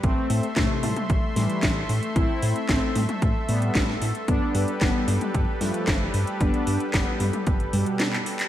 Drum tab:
HH |x-oxx-oxx-oxx-ox|x-oxx-oxx-oxx-ox|x-oxx-oxx-oxx-ox|xxoxx-oxxxoxx-ox|
CP |----x-------x---|----x-------x---|----x-------x---|----x-------xx-x|
SD |----o-----o-o---|----o-------oo--|----o-----o-o---|----o-------o---|
T1 |------oo--------|------oo--------|------oo--------|------oo--------|
BD |o---o---o---o---|o---o---o---o---|o---o---o---o---|o---o---o-------|